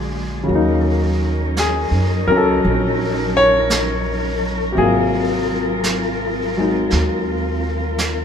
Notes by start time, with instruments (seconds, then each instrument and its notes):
Already playing: upright bass A#1, grand piano D3 G#3 A#3 F#4 G#4, cello section F#3 A#3 D4 G#4
0.43 grand piano C#3 F#3
0.48 upright bass D#2, grand piano A#3, cello section C#4 D#4 A#4, brush sweep
0.55 grand piano D#4
1.57 grand piano G#4, brush sweep, snare, hi-hat pedal
1.91 upright bass F#2
2.27 upright bass C#2, grand piano F#3 A#4
2.32 grand piano C#4
2.37 grand piano A4
2.63 upright bass A#1, brush sweep
3.37 grand piano C#5
3.70 brush sweep, snare, hi-hat pedal
4.72 grand piano C3 G4
4.77 upright bass G#1, grand piano F#3 A#3 F4 G#4, cello section C4 F4, brush sweep
5.83 brush sweep, snare, hi-hat pedal
6.57 grand piano F#3 G#3 D#4
6.90 upright bass D#2, brush sweep, snare
7.98 brush sweep, snare, hi-hat pedal